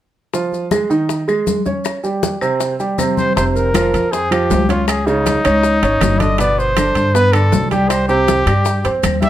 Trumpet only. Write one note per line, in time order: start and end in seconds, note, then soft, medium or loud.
3.17 3.35 C5 medium
3.36 3.45 C5 medium
3.55 4.13 A#4 medium
4.12 4.33 G#4 medium
4.32 4.71 G4 medium
4.70 4.88 F4 medium
4.88 5.08 G#4 medium
5.07 6.21 D#4 medium
6.20 6.39 D#5 medium
6.40 6.60 D5 medium
6.59 7.16 C5 medium
7.14 7.34 B4 loud
7.33 7.70 A4 loud
7.71 7.90 G4 medium
7.89 8.07 C5 medium
8.08 8.91 G4 medium
9.21 9.29 E5 medium